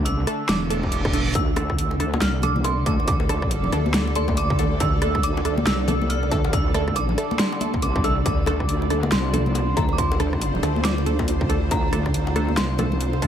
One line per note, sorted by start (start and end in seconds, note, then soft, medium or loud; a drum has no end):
0.00 0.26 C#2 loud
0.00 13.27 D3 medium
0.00 1.31 A3 medium
0.00 1.34 D4 medium
0.05 0.50 E6 loud
0.05 closed hi-hat medium
0.27 0.43 A3 medium
0.27 0.43 D4 medium
0.27 0.43 A4 loud
0.27 cross-stick medium
0.27 closed hi-hat medium
0.48 1.34 E1 loud
0.48 0.89 D6 loud
0.48 snare loud
0.48 closed hi-hat medium
0.48 reverse cymbal medium
0.70 0.81 A3 medium
0.70 0.81 D4 medium
0.70 0.81 A4 medium
0.70 closed hi-hat medium
0.83 kick medium
0.92 closed hi-hat medium
1.05 kick loud
1.05 cross-stick medium
1.13 1.24 A3 medium
1.13 1.24 D4 medium
1.13 1.24 A4 medium
1.13 closed hi-hat medium
1.35 2.20 D2 medium
1.35 13.27 G3 medium
1.35 13.27 D4 loud
1.35 8.24 A4 loud
1.35 8.28 D5 loud
1.35 2.18 E6 loud
1.35 kick loud
1.35 closed hi-hat medium
1.35 high bongo medium
1.56 1.67 A3 medium
1.56 1.67 D4 medium
1.56 1.67 A4 medium
1.56 cross-stick medium
1.56 closed hi-hat medium
1.56 high bongo medium
1.70 kick medium
1.70 cross-stick medium
1.79 closed hi-hat medium
1.91 high bongo medium
2.00 2.15 A3 medium
2.00 2.15 D4 medium
2.00 2.15 A4 medium
2.00 cross-stick medium
2.00 closed hi-hat medium
2.13 high bongo loud
2.13 high conga loud
2.21 2.85 C2 loud
2.21 2.44 F6 loud
2.21 snare loud
2.21 closed hi-hat medium
2.42 2.54 A3 medium
2.42 2.54 D4 medium
2.42 2.54 A4 medium
2.42 2.63 D6 loud
2.42 closed hi-hat medium
2.42 high bongo medium
2.42 high conga medium
2.42 low conga loud
2.56 high conga medium
2.56 low conga medium
2.64 2.74 C6 loud
2.64 closed hi-hat medium
2.64 high bongo medium
2.86 3.71 D2 loud
2.86 2.97 A3 medium
2.86 2.97 D4 medium
2.86 2.97 A4 medium
2.86 3.06 D6 loud
2.86 kick loud
2.86 closed hi-hat medium
3.00 high bongo medium
3.08 4.12 D6 loud
3.08 kick loud
3.08 closed hi-hat medium
3.20 high bongo medium
3.29 3.40 A3 medium
3.29 3.40 D4 medium
3.29 3.40 A4 loud
3.29 cross-stick medium
3.29 closed hi-hat medium
3.42 kick medium
3.42 cross-stick medium
3.51 closed hi-hat medium
3.51 high bongo soft
3.64 low conga medium
3.72 4.79 D2 loud
3.72 3.88 A3 medium
3.72 3.88 D4 medium
3.72 3.88 A4 medium
3.72 cross-stick medium
3.72 closed hi-hat medium
3.72 high bongo medium
3.86 high conga loud
3.94 snare loud
3.94 closed hi-hat medium
4.07 high bongo medium
4.15 4.26 A3 medium
4.15 4.26 D4 medium
4.15 4.26 A4 medium
4.15 4.25 C6 loud
4.15 closed hi-hat medium
4.15 high conga medium
4.28 kick medium
4.28 high bongo medium
4.28 high conga medium
4.37 4.77 D6 loud
4.37 closed hi-hat medium
4.50 kick loud
4.59 4.69 A3 medium
4.59 4.69 D4 medium
4.59 4.69 A4 medium
4.59 closed hi-hat medium
4.59 high bongo medium
4.80 5.65 D2 loud
4.80 5.25 E6 loud
4.80 kick loud
4.80 closed hi-hat medium
4.80 high bongo medium
5.02 5.12 A3 medium
5.02 5.12 D4 medium
5.02 5.12 A4 loud
5.02 cross-stick medium
5.02 closed hi-hat medium
5.15 kick medium
5.15 cross-stick medium
5.15 high bongo medium
5.23 5.68 D6 loud
5.23 closed hi-hat medium
5.37 high bongo medium
5.45 5.61 A3 medium
5.45 5.61 D4 medium
5.45 5.61 A4 medium
5.45 cross-stick medium
5.45 closed hi-hat medium
5.58 high conga loud
5.66 6.30 C2 loud
5.66 6.11 E6 loud
5.66 snare loud
5.66 closed hi-hat medium
5.66 high bongo soft
5.88 5.99 A3 medium
5.88 5.99 D4 medium
5.88 5.99 A4 medium
5.88 closed hi-hat medium
5.88 high bongo medium
5.88 high conga medium
5.88 low conga loud
6.01 high conga medium
6.01 low conga medium
6.10 6.50 F6 loud
6.10 closed hi-hat medium
6.23 high bongo medium
6.31 7.16 D2 medium
6.31 6.42 A3 medium
6.31 6.42 D4 medium
6.31 6.42 A4 medium
6.31 kick loud
6.31 closed hi-hat medium
6.44 high bongo medium
6.53 6.97 E6 loud
6.53 kick loud
6.53 closed hi-hat medium
6.74 6.85 A3 medium
6.74 6.85 D4 medium
6.74 6.85 A4 loud
6.74 cross-stick medium
6.74 closed hi-hat medium
6.74 high bongo medium
6.88 kick medium
6.88 cross-stick medium
6.96 7.41 D6 loud
6.96 closed hi-hat medium
6.96 high bongo medium
7.09 low conga medium
7.18 7.33 A3 medium
7.18 7.33 D4 medium
7.18 7.33 A4 medium
7.18 cross-stick medium
7.18 closed hi-hat medium
7.31 high bongo medium
7.31 high conga loud
7.39 7.84 C6 loud
7.39 snare loud
7.39 closed hi-hat medium
7.52 high bongo medium
7.60 7.71 A3 medium
7.60 7.71 D4 medium
7.60 7.71 A4 medium
7.60 closed hi-hat medium
7.60 high conga medium
7.74 kick medium
7.74 high conga medium
7.82 8.24 C2 loud
7.82 8.05 D6 loud
7.82 closed hi-hat medium
7.82 high bongo soft
7.96 kick loud
8.04 8.15 A3 medium
8.04 8.15 D4 medium
8.04 8.15 A4 medium
8.04 8.26 E6 loud
8.04 closed hi-hat medium
8.04 high bongo medium
8.26 9.11 D2 loud
8.26 13.27 F4 medium
8.26 13.27 C5 loud
8.26 9.15 D6 loud
8.26 kick loud
8.26 closed hi-hat medium
8.26 high bongo medium
8.46 8.58 A3 medium
8.46 8.58 D4 medium
8.46 8.58 A4 loud
8.46 cross-stick medium
8.46 closed hi-hat medium
8.46 high bongo medium
8.60 kick medium
8.60 cross-stick soft
8.69 closed hi-hat medium
8.82 high bongo medium
8.90 9.06 A3 medium
8.90 9.06 D4 medium
8.90 9.06 A4 medium
8.90 cross-stick medium
8.90 closed hi-hat medium
9.03 high bongo medium
9.03 high conga loud
9.12 9.75 C2 loud
9.12 9.79 C6 loud
9.12 snare loud
9.12 closed hi-hat medium
9.33 9.44 A3 medium
9.33 9.44 D4 medium
9.33 9.44 A4 medium
9.33 closed hi-hat medium
9.33 high bongo medium
9.33 high conga medium
9.33 low conga medium
9.46 high conga medium
9.46 low conga medium
9.55 closed hi-hat medium
9.55 high bongo medium
9.77 10.62 D2 loud
9.77 9.87 A3 medium
9.77 9.87 D4 medium
9.77 9.87 A4 medium
9.77 9.93 A#5 medium
9.77 kick loud
9.77 closed hi-hat medium
9.89 high bongo medium
9.93 9.98 D6 medium
9.98 10.87 C6 loud
9.98 kick loud
9.98 closed hi-hat medium
10.12 high bongo medium
10.20 10.30 A3 medium
10.20 10.30 D4 medium
10.20 10.30 A4 loud
10.20 cross-stick medium
10.20 closed hi-hat medium
10.33 kick medium
10.33 cross-stick medium
10.41 closed hi-hat medium
10.41 high bongo medium
10.55 low conga medium
10.63 11.70 D2 loud
10.63 10.79 A3 medium
10.63 10.79 D4 medium
10.63 10.79 A4 medium
10.63 cross-stick medium
10.63 closed hi-hat medium
10.63 high bongo medium
10.76 high conga loud
10.85 11.45 D6 medium
10.85 snare loud
10.85 closed hi-hat medium
10.98 high bongo medium
11.06 11.17 A3 medium
11.06 11.17 D4 medium
11.06 11.17 A4 medium
11.06 closed hi-hat medium
11.06 high conga medium
11.19 kick medium
11.19 high bongo medium
11.19 high conga medium
11.28 closed hi-hat medium
11.41 kick loud
11.49 11.60 A3 medium
11.49 11.60 D4 medium
11.49 11.60 A4 medium
11.49 closed hi-hat medium
11.49 high bongo soft
11.71 12.56 D2 loud
11.71 12.60 A#5 loud
11.71 kick loud
11.71 closed hi-hat medium
11.71 high bongo medium
11.93 12.03 A3 medium
11.93 12.03 D4 medium
11.93 12.03 A4 loud
11.93 cross-stick medium
11.93 closed hi-hat medium
12.06 kick medium
12.06 cross-stick medium
12.06 high bongo medium
12.14 closed hi-hat medium
12.27 high bongo medium
12.36 12.51 A3 medium
12.36 12.51 D4 medium
12.36 12.51 A4 loud
12.36 cross-stick medium
12.36 closed hi-hat medium
12.49 high conga medium
12.57 13.21 C2 loud
12.57 13.27 C6 loud
12.57 snare loud
12.57 closed hi-hat medium
12.57 high bongo medium
12.78 12.89 A3 medium
12.78 12.89 D4 medium
12.78 12.89 A4 medium
12.78 closed hi-hat medium
12.78 high bongo medium
12.78 high conga medium
12.78 low conga loud
12.92 high conga medium
12.92 low conga medium
13.01 closed hi-hat medium
13.13 high bongo medium
13.22 13.27 D2 loud
13.22 13.27 A3 medium
13.22 13.27 D4 medium
13.22 13.27 A4 medium
13.22 kick loud
13.22 closed hi-hat medium